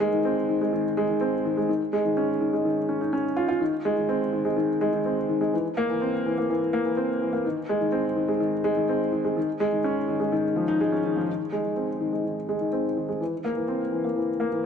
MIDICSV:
0, 0, Header, 1, 2, 480
1, 0, Start_track
1, 0, Tempo, 480000
1, 1687, Time_signature, 4, 2, 24, 8
1, 14659, End_track
2, 0, Start_track
2, 0, Title_t, "Grand piano"
2, 0, Program_c, 0, 0
2, 0, Control_c, 0, 64, 127
2, 3, Note_on_c, 0, 56, 99
2, 127, Note_on_c, 0, 51, 68
2, 196, Note_off_c, 0, 51, 0
2, 250, Note_on_c, 0, 60, 79
2, 362, Note_off_c, 0, 60, 0
2, 490, Note_on_c, 0, 51, 72
2, 602, Note_off_c, 0, 51, 0
2, 613, Note_off_c, 0, 56, 0
2, 613, Note_on_c, 0, 56, 76
2, 724, Note_off_c, 0, 56, 0
2, 728, Note_on_c, 0, 51, 81
2, 842, Note_off_c, 0, 51, 0
2, 972, Note_on_c, 0, 56, 93
2, 1038, Note_off_c, 0, 56, 0
2, 1092, Note_on_c, 0, 51, 70
2, 1158, Note_off_c, 0, 51, 0
2, 1208, Note_on_c, 0, 60, 76
2, 1322, Note_off_c, 0, 60, 0
2, 1452, Note_on_c, 0, 51, 73
2, 1564, Note_off_c, 0, 51, 0
2, 1572, Note_on_c, 0, 56, 76
2, 1684, Note_off_c, 0, 56, 0
2, 1692, Note_on_c, 0, 51, 75
2, 1698, Control_c, 0, 64, 0
2, 1804, Note_off_c, 0, 51, 0
2, 1900, Control_c, 0, 64, 127
2, 1929, Note_on_c, 0, 56, 94
2, 1997, Note_off_c, 0, 56, 0
2, 2051, Note_on_c, 0, 51, 70
2, 2118, Note_off_c, 0, 51, 0
2, 2169, Note_on_c, 0, 61, 73
2, 2282, Note_off_c, 0, 61, 0
2, 2408, Note_on_c, 0, 51, 71
2, 2521, Note_off_c, 0, 51, 0
2, 2531, Note_on_c, 0, 56, 71
2, 2643, Note_off_c, 0, 56, 0
2, 2651, Note_on_c, 0, 51, 78
2, 2763, Note_off_c, 0, 51, 0
2, 2888, Note_on_c, 0, 61, 70
2, 3002, Note_off_c, 0, 61, 0
2, 3009, Note_on_c, 0, 63, 71
2, 3122, Note_off_c, 0, 63, 0
2, 3129, Note_on_c, 0, 61, 77
2, 3242, Note_off_c, 0, 61, 0
2, 3365, Note_on_c, 0, 65, 94
2, 3470, Note_off_c, 0, 65, 0
2, 3485, Note_on_c, 0, 65, 95
2, 3600, Note_off_c, 0, 65, 0
2, 3605, Note_on_c, 0, 51, 72
2, 3621, Control_c, 0, 64, 0
2, 3720, Note_off_c, 0, 51, 0
2, 3778, Control_c, 0, 64, 127
2, 3852, Note_on_c, 0, 56, 96
2, 3918, Note_off_c, 0, 56, 0
2, 3973, Note_on_c, 0, 51, 67
2, 4038, Note_off_c, 0, 51, 0
2, 4088, Note_on_c, 0, 60, 77
2, 4202, Note_off_c, 0, 60, 0
2, 4328, Note_on_c, 0, 51, 70
2, 4441, Note_off_c, 0, 51, 0
2, 4448, Note_on_c, 0, 56, 78
2, 4562, Note_off_c, 0, 56, 0
2, 4565, Note_on_c, 0, 51, 78
2, 4680, Note_off_c, 0, 51, 0
2, 4812, Note_on_c, 0, 56, 94
2, 4878, Note_off_c, 0, 56, 0
2, 4932, Note_on_c, 0, 51, 77
2, 4998, Note_off_c, 0, 51, 0
2, 5054, Note_on_c, 0, 60, 70
2, 5165, Note_off_c, 0, 60, 0
2, 5291, Note_on_c, 0, 51, 70
2, 5403, Note_off_c, 0, 51, 0
2, 5409, Note_on_c, 0, 56, 79
2, 5522, Note_off_c, 0, 56, 0
2, 5531, Note_on_c, 0, 52, 73
2, 5541, Control_c, 0, 64, 0
2, 5643, Note_off_c, 0, 52, 0
2, 5719, Control_c, 0, 64, 127
2, 5771, Note_on_c, 0, 58, 101
2, 5838, Note_off_c, 0, 58, 0
2, 5894, Note_on_c, 0, 52, 72
2, 5959, Note_off_c, 0, 52, 0
2, 6015, Note_on_c, 0, 60, 76
2, 6125, Note_off_c, 0, 60, 0
2, 6257, Note_on_c, 0, 52, 74
2, 6366, Note_off_c, 0, 52, 0
2, 6379, Note_on_c, 0, 58, 71
2, 6487, Note_off_c, 0, 58, 0
2, 6496, Note_on_c, 0, 52, 85
2, 6605, Note_off_c, 0, 52, 0
2, 6732, Note_on_c, 0, 58, 94
2, 6798, Note_off_c, 0, 58, 0
2, 6851, Note_on_c, 0, 52, 74
2, 6917, Note_off_c, 0, 52, 0
2, 6969, Note_on_c, 0, 60, 72
2, 7082, Note_off_c, 0, 60, 0
2, 7212, Note_on_c, 0, 52, 72
2, 7324, Note_off_c, 0, 52, 0
2, 7328, Note_on_c, 0, 58, 77
2, 7442, Note_off_c, 0, 58, 0
2, 7450, Note_on_c, 0, 51, 76
2, 7460, Control_c, 0, 64, 0
2, 7563, Note_off_c, 0, 51, 0
2, 7618, Control_c, 0, 64, 127
2, 7693, Note_on_c, 0, 56, 97
2, 7759, Note_off_c, 0, 56, 0
2, 7808, Note_on_c, 0, 51, 71
2, 7876, Note_off_c, 0, 51, 0
2, 7922, Note_on_c, 0, 60, 77
2, 8039, Note_off_c, 0, 60, 0
2, 8163, Note_on_c, 0, 51, 73
2, 8279, Note_off_c, 0, 51, 0
2, 8284, Note_on_c, 0, 56, 76
2, 8400, Note_off_c, 0, 56, 0
2, 8404, Note_on_c, 0, 51, 80
2, 8520, Note_off_c, 0, 51, 0
2, 8642, Note_on_c, 0, 56, 99
2, 8713, Note_off_c, 0, 56, 0
2, 8770, Note_on_c, 0, 51, 77
2, 8837, Note_off_c, 0, 51, 0
2, 8889, Note_on_c, 0, 60, 80
2, 9002, Note_off_c, 0, 60, 0
2, 9125, Note_on_c, 0, 51, 75
2, 9240, Note_off_c, 0, 51, 0
2, 9245, Note_on_c, 0, 56, 81
2, 9360, Note_off_c, 0, 56, 0
2, 9367, Note_on_c, 0, 51, 78
2, 9380, Control_c, 0, 64, 0
2, 9481, Note_off_c, 0, 51, 0
2, 9558, Control_c, 0, 64, 127
2, 9602, Note_on_c, 0, 56, 96
2, 9673, Note_off_c, 0, 56, 0
2, 9725, Note_on_c, 0, 51, 67
2, 9794, Note_off_c, 0, 51, 0
2, 9843, Note_on_c, 0, 61, 80
2, 9959, Note_off_c, 0, 61, 0
2, 10079, Note_on_c, 0, 51, 76
2, 10197, Note_off_c, 0, 51, 0
2, 10198, Note_on_c, 0, 56, 74
2, 10316, Note_off_c, 0, 56, 0
2, 10323, Note_on_c, 0, 51, 87
2, 10439, Note_off_c, 0, 51, 0
2, 10560, Note_on_c, 0, 53, 72
2, 10632, Note_off_c, 0, 53, 0
2, 10681, Note_on_c, 0, 63, 98
2, 10798, Note_off_c, 0, 63, 0
2, 10805, Note_on_c, 0, 56, 96
2, 10920, Note_off_c, 0, 56, 0
2, 10923, Note_on_c, 0, 61, 74
2, 10994, Note_off_c, 0, 61, 0
2, 11044, Note_on_c, 0, 51, 78
2, 11160, Note_off_c, 0, 51, 0
2, 11162, Note_on_c, 0, 53, 77
2, 11233, Note_off_c, 0, 53, 0
2, 11282, Note_on_c, 0, 51, 64
2, 11301, Control_c, 0, 64, 0
2, 11399, Note_off_c, 0, 51, 0
2, 11474, Control_c, 0, 64, 127
2, 11525, Note_on_c, 0, 56, 79
2, 11594, Note_off_c, 0, 56, 0
2, 11646, Note_on_c, 0, 51, 53
2, 11715, Note_off_c, 0, 51, 0
2, 11763, Note_on_c, 0, 60, 58
2, 11879, Note_off_c, 0, 60, 0
2, 12005, Note_on_c, 0, 51, 58
2, 12120, Note_off_c, 0, 51, 0
2, 12126, Note_on_c, 0, 56, 59
2, 12241, Note_off_c, 0, 56, 0
2, 12244, Note_on_c, 0, 51, 64
2, 12360, Note_off_c, 0, 51, 0
2, 12488, Note_on_c, 0, 56, 77
2, 12556, Note_off_c, 0, 56, 0
2, 12607, Note_on_c, 0, 51, 61
2, 12676, Note_off_c, 0, 51, 0
2, 12726, Note_on_c, 0, 60, 61
2, 12840, Note_off_c, 0, 60, 0
2, 12969, Note_on_c, 0, 51, 64
2, 13082, Note_off_c, 0, 51, 0
2, 13086, Note_on_c, 0, 56, 62
2, 13201, Note_off_c, 0, 56, 0
2, 13207, Note_on_c, 0, 52, 60
2, 13219, Control_c, 0, 64, 0
2, 13321, Note_off_c, 0, 52, 0
2, 13412, Control_c, 0, 64, 127
2, 13444, Note_on_c, 0, 58, 76
2, 13514, Note_off_c, 0, 58, 0
2, 13562, Note_on_c, 0, 52, 57
2, 13633, Note_off_c, 0, 52, 0
2, 13682, Note_on_c, 0, 60, 65
2, 13799, Note_off_c, 0, 60, 0
2, 13920, Note_on_c, 0, 52, 58
2, 14038, Note_off_c, 0, 52, 0
2, 14044, Note_on_c, 0, 58, 59
2, 14159, Note_on_c, 0, 52, 62
2, 14160, Note_off_c, 0, 58, 0
2, 14277, Note_off_c, 0, 52, 0
2, 14398, Note_on_c, 0, 58, 84
2, 14471, Note_off_c, 0, 58, 0
2, 14525, Note_on_c, 0, 52, 60
2, 14594, Note_off_c, 0, 52, 0
2, 14659, End_track
0, 0, End_of_file